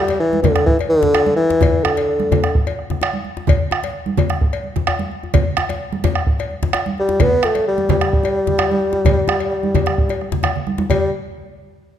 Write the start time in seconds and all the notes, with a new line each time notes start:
Already playing: G3
0.08 cowbell, djembe slap, high conga
0.20 E3
0.33 high conga
0.42 D3, cowbell, djembe tone, djembe bass, low conga
0.56 bombo rim, djembe slap
0.66 E3, bombo low, djembe slap
0.79 cowbell, djembe slap, djembe tone
0.89 D3, high conga
1.03 djembe slap, djembe bass, low conga
1.14 bombo rim, cowbell, djembe tone
1.26 high conga
1.36 E3, djembe slap
1.50 djembe slap, djembe tone
1.61 bombo rim, bombo low, cowbell, high conga, low conga, djembe bass
1.84 D3, bombo rim, djembe tone
1.97 cowbell, djembe slap
2.09 bombo rim
2.20 bombo rim, high conga
2.32 cowbell, djembe tone, djembe bass, low conga
2.44 bombo rim, djembe slap
2.55 bombo low, high conga
2.67 cowbell, djembe tone, high conga
2.79 bombo rim
2.90 bombo rim, djembe slap, djembe bass, low conga
3.01 bombo rim, cowbell, djembe slap, djembe tone, high conga
3.13 djembe slap, high conga
3.25 djembe slap, high conga
3.37 djembe slap, djembe tone
3.47 bombo low, cowbell, low conga, djembe bass
3.71 bombo rim, djembe tone
3.83 cowbell, djembe slap, high conga
4.06 high conga
4.17 cowbell, djembe tone, low conga, djembe bass
4.30 bombo rim, djembe slap
4.41 bombo low, djembe slap
4.53 cowbell, djembe slap
4.64 high conga
4.76 djembe slap, low conga, djembe bass
4.87 bombo rim, cowbell, djembe tone
4.99 djembe slap, high conga
5.11 djembe slap
5.23 djembe tone
5.34 bombo low, cowbell, low conga, djembe bass
5.57 bombo rim, djembe tone
5.69 cowbell, djembe slap, high conga
5.92 high conga
6.04 cowbell, low conga, djembe bass
6.15 bombo rim
6.27 bombo low, djembe slap
6.39 cowbell, djembe slap, djembe tone
6.51 high conga
6.63 djembe slap, low conga, djembe bass
6.73 bombo rim, cowbell, djembe tone
6.86 djembe slap, high conga
6.98 G3, djembe slap
7.09 djembe slap, djembe tone
7.20 B3, bombo low, cowbell, low conga, djembe bass
7.43 A3, bombo rim, djembe tone
7.55 cowbell, djembe slap, high conga
7.68 G3
7.78 high conga
7.89 G3, cowbell, djembe tone, djembe bass, low conga
8.01 bombo rim, djembe slap
8.13 bombo low
8.23 cowbell, djembe slap, djembe tone
8.37 high conga
8.47 djembe slap, djembe bass, low conga
8.58 bombo rim, cowbell, djembe tone
8.70 djembe slap, high conga
8.81 djembe slap
8.93 djembe slap, djembe tone
9.05 bombo low, cowbell, djembe slap, djembe bass, low conga
9.17 high conga
9.28 bombo rim, djembe slap, djembe tone
9.40 bombo rim, cowbell
9.52 bombo rim, high conga
9.63 high conga
9.75 cowbell, djembe slap, djembe tone, djembe bass, low conga
9.86 bombo rim, djembe slap
9.98 bombo low, djembe slap
10.09 cowbell, djembe slap, djembe tone
10.21 bombo rim, high conga
10.32 djembe slap, djembe bass, low conga
10.43 bombo rim, cowbell, djembe tone, low conga
10.55 djembe slap, low conga
10.67 bombo rim, high conga
10.78 djembe slap, djembe tone, high conga
10.89 G3, bombo low, cowbell, djembe bass, low conga